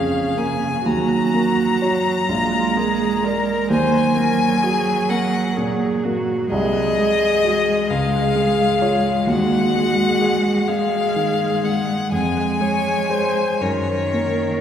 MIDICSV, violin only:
0, 0, Header, 1, 2, 480
1, 0, Start_track
1, 0, Tempo, 953895
1, 431, Time_signature, 6, 3, 24, 8
1, 1868, Tempo, 931677
1, 5708, Tempo, 970874
1, 6668, Tempo, 1052632
1, 7352, End_track
2, 0, Start_track
2, 0, Title_t, "Violin"
2, 0, Program_c, 0, 40
2, 0, Note_on_c, 0, 77, 67
2, 189, Note_on_c, 0, 80, 74
2, 196, Note_off_c, 0, 77, 0
2, 431, Note_on_c, 0, 82, 76
2, 439, Note_off_c, 0, 80, 0
2, 1861, Note_off_c, 0, 82, 0
2, 1864, Note_on_c, 0, 80, 88
2, 2581, Note_on_c, 0, 78, 71
2, 2588, Note_off_c, 0, 80, 0
2, 2824, Note_off_c, 0, 78, 0
2, 3310, Note_on_c, 0, 75, 86
2, 4024, Note_on_c, 0, 77, 79
2, 4031, Note_off_c, 0, 75, 0
2, 4738, Note_on_c, 0, 78, 82
2, 4746, Note_off_c, 0, 77, 0
2, 5458, Note_on_c, 0, 77, 77
2, 5466, Note_off_c, 0, 78, 0
2, 5944, Note_on_c, 0, 78, 62
2, 5951, Note_off_c, 0, 77, 0
2, 6178, Note_off_c, 0, 78, 0
2, 6181, Note_on_c, 0, 80, 79
2, 6900, Note_on_c, 0, 73, 67
2, 6907, Note_off_c, 0, 80, 0
2, 7352, Note_off_c, 0, 73, 0
2, 7352, End_track
0, 0, End_of_file